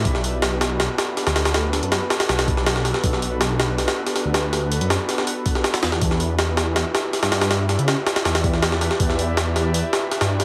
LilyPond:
<<
  \new Staff \with { instrumentName = "Detuned saw bass" } { \clef bass \time 4/4 \key b \minor \tempo 4 = 161 b,,2~ b,,16 r4 d,8.~ | d,8. fis,8 r8. b,,8. b,,4 r16 | b,,2~ b,,16 r4 d,8.~ | d,8. fis,8 r2 r16 e,8 |
e,2~ e,16 r4 g,8.~ | g,8. cis8 r8. e,8. e,4 r16 | e,2~ e,16 r4 g,8. | }
  \new DrumStaff \with { instrumentName = "Drums" } \drummode { \time 4/4 <hho bd>16 sn16 hho8 <hho sn>8 <hho sn>8 <hho sn>8 <hho sn>8 <hho sn>16 <hho sn>16 <hho sn>16 <hho sn>16 | <hho sn>8 <hho sn>16 hh16 <hho sn>8 <hho sn>16 <hho sn>16 <hho sn>16 <hho sn>16 <hho bd>16 sn16 <hho sn>16 sn16 <hho sn>16 sn16 | <hho bd>16 sn16 hho8 <hho sn>8 <hho sn>8 <hho sn>16 <hho sn>8 <hho sn>16 <hho sn>8 <hho sn>8 | <hho sn>8 hho16 hh16 <hho sn>8 <hho sn>16 sn16 hho8 <hho bd>16 sn16 <hho sn>16 <hho sn>16 <hho sn>16 sn16 |
<hho bd>16 sn16 hho8 <hho sn>8 <hho sn>8 <hho sn>8 <hho sn>8 <hho sn>16 <hho sn>16 <hho sn>16 <hho sn>16 | <hho sn>8 <hho sn>16 hh16 <hho sn>8 <hho sn>16 <hho sn>16 <hho sn>16 <hho sn>16 <hho bd>16 sn16 <hho sn>16 sn16 <hho sn>16 sn16 | <hho bd>16 sn16 hho8 <hho sn>8 <hho sn>8 hho8 <hho sn>8 <hho sn>16 <hho sn>8 <hho sn>16 | }
>>